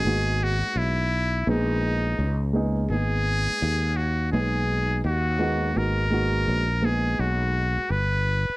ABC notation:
X:1
M:4/4
L:1/16
Q:"Swing 16ths" 1/4=84
K:G#m
V:1 name="Muted trumpet"
G2 F2 E4 D6 z2 | G6 F2 G4 F4 | A6 G2 F4 B4 |]
V:2 name="Grand piano"
[G,A,B,DF]6 z2 [G,A,B,DG]4 z2 [G,A,B,DG]2 | [G,A,B,DG]6 z2 [G,A,B,DG]4 z2 [G,A,B,DF]2 | [G,A,B,DF]2 [G,A,B,DF]2 z2 [G,A,B,DG]6 z4 |]
V:3 name="Fretless electric bass" clef=bass
G,,,3 z B,,,4 A,,,4 C,,4 | G,,,3 z D,,4 B,,,4 D,,4 | G,,,4 A,,,4 B,,,3 z =G,,,3 z |]